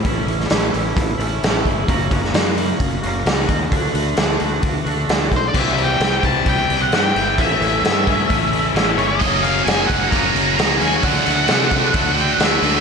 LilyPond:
<<
  \new Staff \with { instrumentName = "Lead electric guitar" } { \time 4/4 \key c \lydian \tempo 4 = 131 r1 | r1 | r2. r8 c''16 d''16 | e''8 g''4 a''8 g''8. fis''16 g''4 |
e''2.~ e''8 cis''16 ees''16~ | ees''8 f''8 aes''8 fis''8 ais''4 ais''8 aes''8 | fis''2~ fis''8 g''16 fis''16 e''4 | }
  \new Staff \with { instrumentName = "Clean electric guitar" } { \time 4/4 \key c \lydian <a, e a cis' e'>8 <a cis' e'>8 <a, e a cis' e'>8 <a cis' e'>4 <a cis' e'>8 <e a cis' e'>4 | <fis, cis fis ais cis' fis'>8 <fis ais cis' fis'>8 <fis, cis fis ais cis' fis'>8 <fis ais cis' fis'>4 <fis ais cis' fis'>8 <fis ais cis' fis'>4 | <d a d' fis'>8 <a d' fis'>8 <d a d' fis'>8 <a d' fis'>4 <a d' fis'>8 <d a d' fis'>4 | c8 g8 e8 c'8 g8 e'8 c'8 e'8 |
a,8 a8 e8 cis'8 a8 e'8 cis'8 e'8 | fis8 ais8 fis8 cis'8 ais8 fis'8 cis'8 fis'8 | d8 a8 d8 d'8 a8 fis'8 d'8 fis'8 | }
  \new Staff \with { instrumentName = "Distorted electric guitar" } { \time 4/4 \key c \lydian r1 | r1 | r1 | <c e g c' e'>8 <g c' e'>8 <e g c' e'>8 <g c' e'>8 <c e g c' e'>4 <e g c' e'>8 <g c' e'>8 |
<a, e a cis' e'>8 <a cis' e'>8 <e a cis' e'>8 <a cis' e'>8 <a, e a cis' e'>4 <e a cis' e'>8 <a cis' e'>8 | <fis, cis fis ais cis'>8 <fis ais cis'>8 <cis fis ais cis'>8 <fis ais cis'>8 <fis, cis fis ais cis'>4 <cis fis ais cis'>8 <fis ais cis'>8 | <d fis a d'>8 <fis a d'>8 <d fis a d'>8 <fis a d'>8 <d fis a d'>4 <d fis a d'>8 <fis a d'>8 | }
  \new Staff \with { instrumentName = "Distorted electric guitar" } { \time 4/4 \key c \lydian r1 | r1 | r1 | r1 |
r1 | <fis, cis fis ais cis'>8 <fis ais cis'>8 <fis, cis fis ais cis'>8 <fis ais cis'>8 <cis fis ais cis'>8 <fis, cis fis ais cis'>8 <cis fis ais cis'>8 <fis ais cis'>8 | <d fis a d'>8 <fis a d'>8 <d fis a d'>8 <fis a d'>8 <d fis a d'>8 <d fis a d'>8 <d fis a d'>8 <fis a d'>8 | }
  \new Staff \with { instrumentName = "Fingered electric bass" } { \clef bass \time 4/4 \key c \lydian a,,8 a,,8 a,,8 a,,8 a,,8 a,,8 a,,8 g,,8 | fis,,8 fis,,8 fis,4 fis,,8 fis,,8 cis,8 ees,8 | d,8 d,8 d,8 d,8 d,8 d,8 d,8 b,,8 | c,4 c,8 c,8 c,8 c,8 g,8 g,,8 |
a,,8 a,,8 g,4 a,,4 a,,8 g,,8 | fis,,4 fis,,8 fis,,8 fis,,8 fis,,8 cis,8 ees,8 | d,8 d,8 c4 d,4 d,8 d,8 | }
  \new DrumStaff \with { instrumentName = "Drums" } \drummode { \time 4/4 <hho bd>8 hho16 sn16 <hho sn>8 hho8 <hho bd>8 hho8 <hho sn>8 <hho bd>8 | <hho bd>8 <hho bd>16 sn16 <hho sn>8 hho8 <hho bd>8 hho8 <hho sn>8 <hho bd>8 | <hho bd>8 hho8 <hho sn>8 hho8 <hho bd>8 hho8 <hho sn>8 <hho bd>8 | <cymc bd>16 sn16 hho8 <hho sn>8 <hho bd>8 <hho bd>8 hho8 <hho sn>8 hho8 |
<hho bd>8 hho8 <hho sn>8 <hho bd>8 <hho bd>8 hho8 <hho sn>8 hho8 | <hho bd>8 hho8 <hho sn>8 <hho bd>8 <hho bd>8 hho8 <hho sn>8 hho8 | <hho bd>16 sn16 hho8 <hho sn>8 <hho bd>8 <hho bd>8 hho8 <hho sn>8 hho8 | }
>>